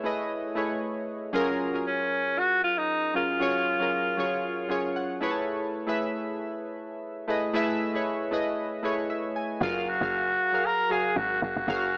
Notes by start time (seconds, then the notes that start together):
Already playing: A3 E4 G#4 B4 C#5 E5
0.04 A3 E4 G#4 B4 D#5
0.55 A3 E4 G#4 B4 C#5
1.33 F#3 C#4 F4 G#4 A#4
1.73 F#3 C#4 F4 G#4 A#4
1.87 C#4
2.38 F#4
2.64 F4
2.78 D#4
3.14 F#3 C#4 F4 G#4 A#4
3.40 F#3 C#4 F4 G#4 C#5
3.80 F#3 C#4 F4 G#4 A#4
4.17 F#3 C#4 F4 G#4 C#5
4.69 F#3 C#4 F4 G#4 C#5
4.96 F#5
5.21 A3 E4 G#4 B4 C#5
5.31 A5
5.87 A3 E4 G#4 B4 E5
7.28 A3 E4 G#4 B4 D#5
7.53 A3 E4 G#4 B4 E5
7.93 A3 E4 G#4 B4 C#5
8.31 A3 E4 G#4 B4 D#5
8.83 A3 E4 G#4 B4 C#5
9.10 E5
9.36 G#5
9.60 F#1 F#3 F4 F#4 G#4 A#4 F5
9.88 F#4
10.00 F#1 F#3 F#4 G#4 A#4 F5
10.52 F#3 F#4 G#4 A#4 F5
10.66 A#4
10.90 F#3 F#4 G#4 A#4 F5
11.16 G#1 F#4
11.42 F#1 F#4
11.56 F1
11.67 F#1 F#3 F#4 G#4 A#4 F5